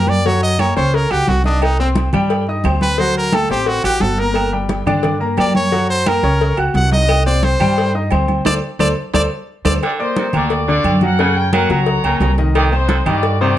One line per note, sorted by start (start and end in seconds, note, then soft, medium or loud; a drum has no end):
0.00 0.71 F#2 medium
0.00 0.19 A#3 medium
0.00 0.20 G4 medium
0.00 0.11 A#4 medium
0.00 0.20 G5 medium
0.07 0.28 D5 loud
0.07 high conga medium
0.07 low agogo medium
0.24 0.54 F#3 medium
0.24 0.54 F#4 medium
0.24 0.43 C#5 medium
0.24 0.54 F#5 medium
0.24 cowbell loud
0.24 high conga soft
0.41 0.61 D#5 loud
0.41 high conga soft
0.59 0.74 A#3 medium
0.59 0.74 A#4 medium
0.59 0.76 C#5 medium
0.59 0.74 A#5 medium
0.59 cowbell medium
0.59 high conga medium
0.59 low agogo loud
0.59 claves medium
0.76 1.09 C#2 loud
0.76 1.05 C#4 medium
0.76 0.96 C5 medium
0.76 1.05 C#5 medium
0.76 1.05 C#6 medium
0.76 cowbell medium
0.76 high conga soft
0.76 low agogo medium
0.93 1.13 A#4 medium
0.93 cowbell loud
0.93 high conga soft
1.10 1.27 C#2 medium
1.10 1.39 F#4 medium
1.10 1.30 G4 loud
1.10 1.39 F#5 medium
1.10 1.40 F#6 medium
1.10 high conga soft
1.10 low agogo loud
1.10 claves medium
1.28 2.08 C2 medium
1.28 1.45 F#4 medium
1.28 cowbell medium
1.28 high conga medium
1.28 low timbale medium
1.28 low agogo medium
1.44 1.65 D4 medium
1.44 1.73 D#4 medium
1.44 1.73 D#5 medium
1.44 1.74 D#6 medium
1.44 cowbell medium
1.44 high conga medium
1.62 1.79 D#4 medium
1.62 cowbell loud
1.62 high conga soft
1.62 low agogo loud
1.62 claves medium
1.79 2.07 C4 medium
1.79 1.90 C4 medium
1.79 2.08 C5 medium
1.79 2.08 C6 medium
1.79 high conga soft
1.95 cowbell medium
1.95 high conga loud
1.95 low agogo medium
2.13 2.61 G2 medium
2.13 2.42 G3 medium
2.13 2.42 G4 loud
2.13 2.42 G5 loud
2.13 high conga soft
2.13 low conga medium
2.13 low agogo loud
2.13 claves medium
2.30 cowbell loud
2.30 high conga soft
2.30 low agogo loud
2.47 2.62 D#4 medium
2.47 2.62 D#5 medium
2.47 2.63 D#6 medium
2.47 high conga soft
2.64 3.44 D2 loud
2.64 2.93 C4 medium
2.64 2.93 C5 medium
2.64 2.94 C6 medium
2.64 cowbell medium
2.64 high conga medium
2.64 low timbale medium
2.64 low agogo loud
2.64 claves medium
2.81 3.01 B4 loud
2.81 high conga medium
2.81 low agogo medium
2.98 3.27 F#3 medium
2.98 3.28 F#4 loud
2.98 3.16 C5 loud
2.98 3.28 F#5 medium
2.98 cowbell loud
2.98 high conga soft
3.16 3.37 A#4 loud
3.16 high conga soft
3.32 3.48 A3 medium
3.32 3.48 A4 medium
3.32 3.51 A4 medium
3.32 3.48 A5 medium
3.32 cowbell medium
3.32 high conga loud
3.32 low agogo loud
3.32 claves medium
3.49 3.82 A1 medium
3.49 3.78 C4 medium
3.49 3.69 G4 medium
3.49 3.79 C5 medium
3.49 3.79 C6 medium
3.49 cowbell medium
3.49 high conga soft
3.49 low agogo medium
3.66 3.85 F#4 medium
3.66 cowbell loud
3.66 high conga soft
3.84 4.00 A1 medium
3.84 4.12 F#4 medium
3.84 4.03 G4 loud
3.84 4.12 F#5 medium
3.84 4.13 F#6 medium
3.84 high conga soft
3.84 low agogo loud
3.84 claves medium
4.00 4.81 G1 loud
4.00 4.21 A4 medium
4.00 cowbell medium
4.00 high conga medium
4.00 low timbale medium
4.00 low agogo medium
4.18 4.47 A#3 medium
4.18 4.47 A#4 medium
4.18 4.53 A#4 medium
4.18 4.47 A#5 medium
4.18 cowbell medium
4.34 cowbell loud
4.34 high conga soft
4.34 low agogo loud
4.34 claves medium
4.52 4.81 G3 medium
4.52 4.81 G4 medium
4.52 4.81 G5 medium
4.52 high conga soft
4.69 cowbell medium
4.69 high conga loud
4.69 low agogo medium
4.86 5.34 G2 medium
4.86 5.15 D3 medium
4.86 5.15 D4 medium
4.86 5.15 D5 medium
4.86 high conga soft
4.86 low conga medium
4.86 low agogo loud
4.86 claves medium
5.03 cowbell loud
5.03 high conga soft
5.03 low conga medium
5.03 low agogo medium
5.20 5.35 A#3 medium
5.20 5.35 A#4 medium
5.20 5.35 A#5 medium
5.20 high conga soft
5.37 6.18 F#2 medium
5.37 5.66 A#3 medium
5.37 5.66 G4 medium
5.37 5.55 D5 medium
5.37 5.66 G5 medium
5.37 cowbell medium
5.37 high conga medium
5.37 low timbale medium
5.37 low agogo loud
5.37 claves medium
5.55 5.87 C#5 medium
5.55 high conga medium
5.55 low agogo medium
5.72 6.00 F#3 medium
5.72 6.00 F#4 medium
5.72 6.00 F#5 medium
5.72 cowbell loud
5.72 high conga soft
5.89 6.10 C5 loud
5.89 high conga soft
6.06 6.21 A#3 medium
6.06 6.21 A#4 medium
6.06 6.59 A#4 medium
6.06 6.21 A#5 medium
6.06 cowbell medium
6.06 high conga loud
6.06 low agogo loud
6.06 claves medium
6.23 6.55 C#2 loud
6.23 6.52 C#4 medium
6.23 6.52 C#5 medium
6.23 6.52 C#6 medium
6.23 cowbell medium
6.23 high conga soft
6.23 low agogo medium
6.41 cowbell loud
6.41 high conga soft
6.57 6.73 C#2 medium
6.57 6.86 F#4 medium
6.57 6.86 F#5 medium
6.57 6.86 F#6 medium
6.57 high conga soft
6.57 low agogo loud
6.57 claves medium
6.74 7.54 C2 loud
6.74 6.91 F#5 loud
6.74 cowbell medium
6.74 high conga medium
6.74 low agogo medium
6.92 7.20 D#4 medium
6.92 7.20 D#5 medium
6.92 7.24 D#5 loud
6.92 7.20 D#6 medium
6.92 cowbell medium
6.92 high conga medium
7.09 cowbell loud
7.09 high conga soft
7.09 low agogo loud
7.09 claves medium
7.26 7.54 C4 medium
7.26 7.54 C5 medium
7.26 7.46 D5 medium
7.26 7.55 C6 medium
7.26 high conga soft
7.43 7.95 C5 medium
7.43 cowbell medium
7.43 high conga loud
7.43 low agogo medium
7.60 8.08 G2 medium
7.60 7.89 G3 medium
7.60 7.89 G4 medium
7.60 7.89 G5 loud
7.60 high conga soft
7.60 low conga medium
7.60 low agogo loud
7.60 claves medium
7.77 cowbell loud
7.77 high conga soft
7.77 low agogo loud
7.95 8.09 D#4 medium
7.95 8.09 D#5 medium
7.95 8.09 D#6 medium
7.95 high conga soft
8.11 8.43 D2 loud
8.11 8.39 C4 medium
8.11 8.40 C5 medium
8.11 8.40 C6 medium
8.11 cowbell medium
8.11 high conga medium
8.11 low agogo loud
8.11 claves medium
8.28 high conga medium
8.28 low agogo medium
8.45 8.58 D2 loud
8.45 8.57 A4 loud
8.45 8.57 C5 loud
8.45 8.57 D5 loud
8.45 8.55 D5 loud
8.45 cowbell loud
8.45 high conga loud
8.45 high timbale loud
8.45 claves loud
8.79 8.92 D2 loud
8.79 8.91 A4 loud
8.79 8.91 C5 loud
8.79 8.91 D5 loud
8.79 8.89 D5 medium
8.79 cowbell loud
8.79 high conga loud
8.79 high timbale loud
8.79 claves loud
9.14 9.26 D2 loud
9.14 9.25 A4 loud
9.14 9.25 C5 loud
9.14 9.25 D5 loud
9.14 9.23 D5 loud
9.14 cowbell loud
9.14 high conga loud
9.14 high timbale loud
9.14 claves loud
9.65 9.78 D2 loud
9.65 9.76 A4 loud
9.65 9.76 C5 medium
9.65 9.76 D5 medium
9.65 9.73 D5 loud
9.65 cowbell loud
9.65 high conga loud
9.65 high timbale loud
9.65 claves loud
9.83 10.01 D3 loud
9.83 9.92 G4 medium
9.83 9.91 D5 medium
9.83 cowbell loud
9.83 high conga soft
9.83 low agogo loud
9.83 claves medium
9.99 10.27 A#3 medium
9.99 10.32 D#4 medium
9.99 10.31 C5 medium
9.99 10.27 D5 medium
9.99 10.28 D6 medium
9.99 high conga soft
10.16 10.26 C3 medium
10.16 cowbell medium
10.16 high conga loud
10.16 low agogo medium
10.33 10.81 D2 loud
10.33 10.53 D3 medium
10.33 10.62 A#3 medium
10.33 10.67 F#4 medium
10.33 10.62 A#4 medium
10.33 10.66 D5 medium
10.33 10.62 A#5 medium
10.33 high conga soft
10.33 low conga loud
10.33 low agogo loud
10.33 claves medium
10.50 cowbell loud
10.50 high conga soft
10.50 low agogo medium
10.68 10.96 D3 medium
10.68 10.96 D3 loud
10.68 10.96 D4 medium
10.68 11.01 F#4 medium
10.68 10.96 D5 medium
10.68 11.00 D5 loud
10.68 high conga soft
10.84 11.64 F#2 loud
10.84 cowbell medium
10.84 high conga medium
10.84 low agogo loud
10.84 claves medium
11.01 11.16 F#3 medium
11.01 11.16 F#4 medium
11.01 11.36 A#4 medium
11.01 11.36 F#5 loud
11.01 11.16 F#5 medium
11.01 high conga medium
11.01 low agogo medium
11.18 11.37 C#3 loud
11.18 11.47 C#3 medium
11.18 11.47 C#4 medium
11.18 11.47 C#5 medium
11.18 cowbell loud
11.18 high conga soft
11.36 11.53 A#4 medium
11.36 11.53 G5 loud
11.36 high conga soft
11.53 11.81 F#3 loud
11.53 11.67 A#3 medium
11.53 11.67 A#4 medium
11.53 11.70 A#4 medium
11.53 11.69 F#5 loud
11.53 11.68 A#5 medium
11.53 cowbell medium
11.53 high conga loud
11.53 low agogo loud
11.53 claves medium
11.69 12.01 C#2 loud
11.69 11.98 F#3 medium
11.69 11.98 F#4 medium
11.69 12.35 C#5 medium
11.69 11.98 F#5 medium
11.69 12.35 A#5 loud
11.69 cowbell medium
11.69 high conga soft
11.69 low agogo medium
11.86 cowbell loud
11.86 high conga soft
12.04 12.20 C#2 medium
12.04 12.32 C#3 medium
12.04 12.33 A#3 medium
12.04 12.33 A#4 medium
12.04 12.33 A#5 medium
12.04 high conga soft
12.04 low agogo loud
12.04 claves medium
12.20 13.00 C2 loud
12.20 cowbell medium
12.20 high conga medium
12.20 low timbale medium
12.20 low agogo medium
12.38 12.66 D#3 medium
12.38 12.66 D#4 medium
12.38 12.67 D#5 medium
12.38 cowbell medium
12.54 12.73 D#3 loud
12.54 12.64 G4 medium
12.54 12.63 D5 loud
12.54 cowbell loud
12.54 high conga soft
12.54 low agogo loud
12.54 claves medium
12.72 13.00 C4 medium
12.72 13.05 D#4 medium
12.72 13.00 C5 medium
12.72 13.04 C5 loud
12.72 13.00 C6 medium
12.72 high conga soft
12.88 12.97 D3 medium
12.88 cowbell medium
12.88 high conga loud
12.88 low agogo medium
13.06 13.53 G2 loud
13.06 13.24 D#3 medium
13.06 13.34 G3 medium
13.06 13.34 D#4 medium
13.06 13.40 F#4 medium
13.06 13.39 D5 medium
13.06 high conga soft
13.06 low conga medium
13.06 low agogo loud
13.06 claves medium
13.23 cowbell loud
13.23 high conga soft
13.23 low agogo medium
13.40 13.58 C3 medium
13.40 13.58 D#3 medium
13.40 13.58 C4 medium
13.40 13.58 F#4 medium
13.40 13.58 C5 loud
13.40 13.58 D5 loud
13.40 high conga soft